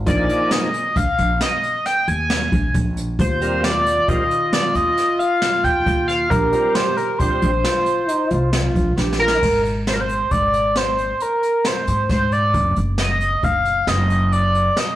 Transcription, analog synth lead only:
0.07 0.53 D5 medium
0.52 0.98 D#5 medium
0.97 1.41 F5 loud
1.42 1.87 D#5 medium
1.86 2.09 G5 medium
2.08 2.74 G#5 loud
3.20 3.66 C5 medium
3.65 4.10 D5 medium
4.08 4.54 D#5 loud
4.53 4.77 D5 loud
4.75 5.21 D#5 loud
5.19 5.66 F5 loud
5.64 6.07 G5 loud
6.08 6.32 F5 loud
6.30 6.76 A#4 medium
6.75 6.98 C5 medium
6.97 7.20 A#4 medium
7.19 8.97 C5 medium
9.19 9.61 A#4 loud
9.88 9.95 C5 medium
9.94 10.02 A#4 medium
10.00 10.33 C5 medium
10.31 10.78 D5 loud
10.77 11.23 C5 medium
11.22 11.68 A#4 medium
11.67 12.10 C5 medium
12.10 12.34 C5 medium
12.33 12.77 D5 medium
12.99 13.46 D#5 loud
13.44 13.90 F5 loud
13.88 14.34 D#5 loud
14.32 14.80 D5 medium
14.79 14.96 D#5 medium

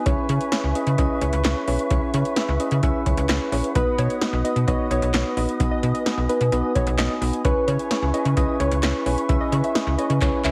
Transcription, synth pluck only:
3.76 3.89 B4 loud
3.99 4.31 C#5 medium
4.44 4.51 D#5 medium
4.68 4.81 D#5 medium
4.91 4.97 C#5 medium
5.71 5.78 D#5 medium
5.94 6.01 D#5 medium
6.29 6.62 B4 medium
6.75 6.82 C#5 medium
6.99 7.31 D#5 medium
7.45 7.58 B4 loud
7.68 8.00 C#5 medium
8.14 8.20 D#5 medium
8.37 8.50 D#5 medium
8.60 8.66 C#5 medium
9.41 9.47 D#5 medium
9.64 9.71 E5 medium
9.98 10.31 D#5 medium
10.45 10.51 E5 medium

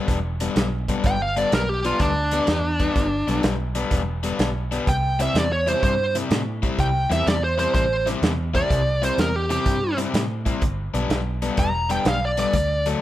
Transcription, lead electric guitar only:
1.07 1.21 G5 loud
1.22 1.38 F5 medium
1.38 1.53 D5 medium
1.54 1.69 A#4 medium
1.69 1.84 G4 medium
1.86 2.00 F4 medium
2.01 3.40 D4 medium
4.89 5.19 G5 medium
5.22 5.36 E5 medium
5.38 5.52 D5 medium
5.52 5.68 C#5 medium
5.68 5.83 C5 medium
5.84 6.15 C5 medium
6.80 7.10 G5 medium
7.12 7.27 E5 medium
7.28 7.43 D5 medium
7.44 7.58 C5 medium
7.59 7.73 C5 medium
7.75 8.06 C5 medium
8.55 9.01 D5 loud
9.04 9.19 C5 medium
9.20 9.36 A#4 medium
9.36 9.50 G4 medium
9.51 9.97 G4 medium
11.59 11.89 A#5 medium
11.91 12.06 G5 medium
12.08 12.22 F5 medium
12.25 12.39 D5 medium
12.40 12.85 D5 medium

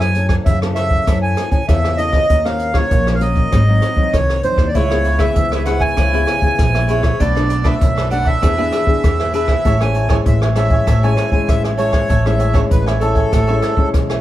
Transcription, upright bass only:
0.00 0.37 F#2 medium
0.46 0.98 F#2 medium
1.07 1.33 F#2 loud
1.69 2.21 E2 medium
2.30 2.82 D#2 medium
2.91 3.43 A#1 medium
3.52 3.78 G#1 loud
4.14 4.40 C2 medium
4.43 4.55 F2 medium
4.56 4.71 D#2 medium
4.75 5.27 C#2 loud
5.36 5.88 C#2 medium
5.97 6.23 C#2 medium
6.59 7.11 A#1 medium
7.20 7.72 B1 medium
7.81 8.33 B1 loud
8.43 8.69 E2 loud
9.04 9.56 E2 medium
9.65 10.17 A1 medium
10.26 10.78 A1 loud
10.87 11.13 A1 loud
11.48 12.01 A1 medium
12.10 12.62 A1 loud
12.71 13.23 A1 medium
13.33 13.58 A1 medium
13.94 14.21 B1 medium

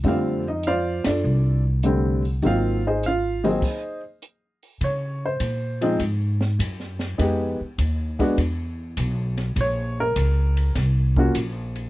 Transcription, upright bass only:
0.04 1.01 F2 medium
1.06 1.23 F#2 medium
1.24 2.39 C2 medium
2.42 3.58 G#1 medium
4.81 5.39 C#3 medium
5.40 5.98 A#2 medium
6.00 6.58 G#2 medium
6.59 7.17 F#2 medium
7.19 7.58 F2 medium
7.61 muted upright bass stroke soft
7.78 8.37 D#2 medium
8.38 8.96 E2 medium
8.98 9.55 B1 medium
9.56 10.15 A#1 medium
10.16 10.74 C#2 medium
10.76 11.34 C2 medium
11.35 11.90 A#1 medium

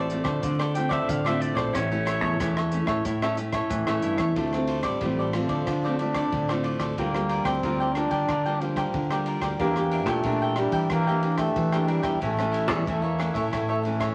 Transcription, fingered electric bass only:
0.00 0.20 A1 medium
0.24 0.39 D3 medium
0.43 0.99 D3 medium
1.09 1.51 D3 medium
1.56 1.70 A#1 medium
1.75 2.21 A1 loud
2.21 2.36 E2 medium
2.40 2.81 E2 loud
2.86 3.01 A2 medium
3.05 3.61 A2 medium
3.70 3.84 A2 loud
3.88 4.02 A2 medium
4.02 4.16 G2 medium
4.17 4.33 E2 medium
4.36 4.82 D2 medium
4.82 4.97 A1 medium
5.01 5.43 A1 medium
5.48 5.63 D3 medium
5.67 6.22 D3 medium
6.33 6.74 D3 medium
6.79 6.94 D2 medium
6.98 7.40 D2 medium
7.44 7.59 D2 medium
7.64 8.05 D2 medium
8.10 8.25 D3 medium
8.29 8.84 D3 medium
8.94 9.36 D3 medium
9.40 9.56 D2 medium
9.59 10.06 E2 medium
10.06 10.21 A#2 medium
10.24 10.67 A#2 medium
10.71 10.86 E3 medium
10.91 11.46 E3 medium
11.56 11.98 E3 medium
12.03 12.18 E2 medium
12.22 12.68 A1 medium
12.68 12.83 E2 medium
12.87 13.29 E2 medium
13.34 13.49 A2 medium
13.53 14.09 A2 medium

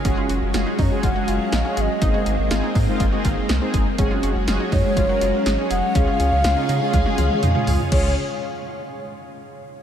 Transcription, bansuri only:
0.79 0.84 D#5 medium
0.83 1.02 C#5 medium
1.03 1.29 F#5 loud
1.28 1.77 F5 loud
1.77 2.75 D#5 medium
1.77 1.82 F5 medium
4.72 5.42 C#5 loud
5.70 5.97 F#5 loud
5.95 7.67 F5 loud
7.92 8.15 C#5 medium

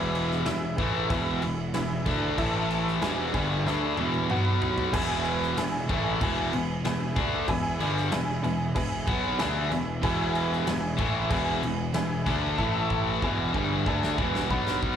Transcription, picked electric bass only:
0.00 0.43 E1 loud
0.47 0.77 E1 medium
0.78 1.08 A1 medium
1.10 1.40 E1 medium
1.41 1.72 E1 medium
1.75 2.05 E1 medium
2.06 2.36 D2 medium
2.38 2.98 A1 loud
3.02 3.32 E1 loud
3.34 3.64 G1 loud
3.66 3.96 D2 medium
3.98 4.28 E1 medium
4.30 4.90 B1 medium
4.94 5.54 E1 loud
5.58 5.87 E1 medium
5.90 6.19 A1 medium
6.21 6.51 E1 loud
6.54 6.83 E1 medium
6.85 7.14 E1 medium
7.17 7.46 D2 medium
7.49 7.78 E1 medium
7.80 8.10 G1 loud
8.12 8.42 E1 medium
8.44 8.74 E1 medium
8.76 9.05 E1 medium
9.08 9.37 B1 medium
9.40 9.69 D2 medium
9.71 10.01 E1 medium
10.03 10.63 E1 medium
10.67 10.97 E1 medium
10.99 11.29 A1 medium
11.30 11.60 E1 loud
11.64 11.93 E1 medium
11.97 12.25 E1 medium
12.27 12.56 D2 loud
12.59 13.19 A1 medium
13.22 13.52 E1 loud
13.55 13.84 G1 medium
13.87 14.16 D2 medium
14.18 14.48 E1 medium
14.51 14.96 B1 medium

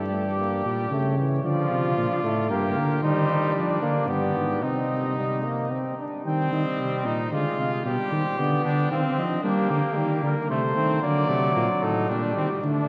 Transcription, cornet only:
0.00 0.87 D5 medium
0.91 1.43 C#5 medium
1.45 1.96 D5 medium
1.97 2.49 D5 medium
2.50 2.58 A#4 medium
2.56 2.65 A4 medium
2.63 3.02 A#4 medium
3.02 3.54 C5 medium
3.55 4.07 D5 medium
4.09 4.62 D5 medium
4.63 5.96 D#5 medium
6.26 6.51 G5 medium
6.53 7.31 D#5 medium
7.33 7.59 D5 medium
7.60 7.72 F5 medium
7.86 8.12 D5 medium
8.12 8.40 C5 medium
8.38 8.65 D5 medium
8.66 8.91 G5 medium
8.92 9.17 F5 medium
9.18 9.44 D#5 medium
9.45 10.22 G4 medium
10.24 10.50 A#4 medium
10.50 11.02 C5 medium
11.03 11.84 D5 loud
11.83 12.09 A4 medium
12.10 12.62 G4 medium

